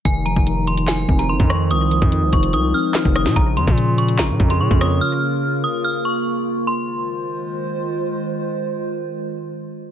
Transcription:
<<
  \new Staff \with { instrumentName = "Synth bell" } { \time 4/4 \key f \minor \tempo 4 = 145 aes''8 bes''4 c'''8 aes''8. bes''16 c'''8 des'''8 | ees'''4. des'''8 ees'''8 f'''4 ees'''8 | bes''8 c'''4 des'''8 bes''8. c'''16 des'''8 ees'''8 | f'''4. ees'''8 f'''8 des'''4. |
c'''2. r4 | r1 | }
  \new Staff \with { instrumentName = "Ambient pad" } { \time 4/4 \key f \minor <ees aes f' c''>1~ | <ees aes f' c''>1 | <des bes f' bes'>1~ | <des bes f' bes'>1 |
<ees aes f' c''>1~ | <ees aes f' c''>1 | }
  \new Staff \with { instrumentName = "Tine electric piano" } { \clef bass \time 4/4 \key f \minor ees8 f8 ees4 ees8 c'8 ees4 | ees8 f8 ees4 ees8 c'8 ees8 ees'8 | des8 f8 des4 des8 des'8 des8 des''8~ | des''2 r2 |
r1 | r1 | }
  \new Staff \with { instrumentName = "808-style bass" } { \clef bass \time 4/4 \key f \minor f,,8. f,,4.~ f,,16 f,,8 g,,16 f,8. | c,8. f,8 c,16 f,,8 c,8 r8. f,,8 c16 | bes,,8 f,16 bes,4~ bes,16 aes,,16 bes,16 f,8 bes,16 f,8. | r1 |
r1 | r1 | }
  \new DrumStaff \with { instrumentName = "Drums" } \drummode { \time 4/4 <hh bd>8 hh16 bd16 hh8 hh16 hh16 <hc sn>8 bd16 hh16 r16 bd16 <hh ss>8 | hh8 hh16 bd16 hh8 <hh bd>16 hh16 hh4 <hc sn>16 bd16 <hh ss>16 sn16 | <hh bd>8 hh16 bd16 hh8 hh16 hh16 <hc sn>8 bd16 hh16 r16 bd16 <hh ss>8 | r4 r4 r4 r4 |
r4 r4 r4 r4 | r4 r4 r4 r4 | }
>>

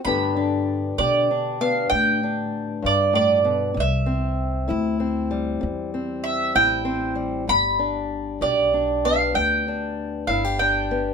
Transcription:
<<
  \new Staff \with { instrumentName = "Mandolin" } { \time 12/8 \key g \major \tempo 4. = 65 b''4. d''4 f''8 g''4. d''8 d''4 | e''2 r2 e''8 g''4 r8 | b''4. d''4 f''8 g''4. f''8 g''4 | }
  \new Staff \with { instrumentName = "Steel-string acoustic guitar" } { \time 12/8 \key g \major << { <d b d' g'>8 d'4 g'8 d'8 b4 d'2~ d'8 | r8 c'4 e'8 c'8 g4 c'4 e'8 c'8 g8~ | g8 d'4 g'8 d'8 b4 d'4 e'16 g'16 d'8 b8 | } \\ { g,4 r8 g,4 r8 g,4 r8 g,8 a,8 b,8 | c4 r8 c4 r8 c4 r8 c4 r8 | g,4 r8 g,4 r8 g,4 r8 g,4 r8 | } >> }
  \new Staff \with { instrumentName = "Upright bass" } { \clef bass \time 12/8 \key g \major g,4. b,4. a,4. g,4. | c,4. d,4. e,4. a,,4. | g,,4. b,,4. d,4. g,,4. | }
>>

